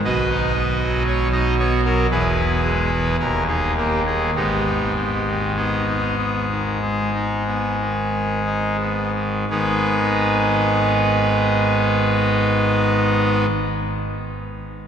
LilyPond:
<<
  \new Staff \with { instrumentName = "Pipe organ" } { \time 4/4 \key gis \minor \tempo 4 = 47 <fis' b' dis''>4 cis''16 dis''16 cis''16 ais'16 <e' gis' b'>4 ais'16 gis'16 g'16 gis'16 | <b dis' g'>4 <b dis' gis'>2~ <b dis' gis'>8 r8 | <gis, dis b dis' gis' b'>1 | }
  \new Staff \with { instrumentName = "Pipe organ" } { \clef bass \time 4/4 \key gis \minor << { b,16 dis'16 b16 fis8 dis'16 b16 fis16 e,16 b16 gis16 e16 dis,16 dis'16 ais16 dis16 | gis,16 dis'16 b16 dis8 dis'16 b16 dis16 gis16 dis'16 b16 dis8 dis'16 b16 dis16 | r1 | } \\ { b,,2 e,,4 dis,,4 | gis,,1 | gis,,1 | } >> }
>>